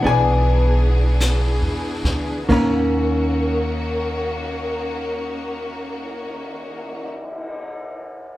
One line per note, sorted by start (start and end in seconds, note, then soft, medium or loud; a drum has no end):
0.00 2.44 E3 soft
0.00 2.47 E3 soft
0.00 2.43 B3 soft
0.00 2.48 B3 soft
0.00 2.44 D4 soft
0.00 2.44 G#4 medium
0.04 1.57 B1 medium
0.04 0.08 D4 soft
0.04 0.09 G#4 soft
0.04 1.17 G#5 medium
0.04 brush sweep soft
0.09 2.47 B4 medium
0.09 2.47 D5 soft
1.20 snare soft
1.20 hi-hat pedal medium
1.62 2.01 E2 soft
2.04 2.45 D2 medium
2.04 snare soft
2.48 7.10 D#2 medium
2.48 7.08 D#3 soft
2.48 7.13 D#3 soft
2.48 7.09 A#3 soft
2.48 7.14 A#3 soft
2.48 7.08 C#4 soft
2.48 7.15 C#4 soft
2.48 7.08 F#4 medium
2.48 kick soft
2.48 ride soft
2.53 7.13 A#5 medium
3.40 cymbal swell soft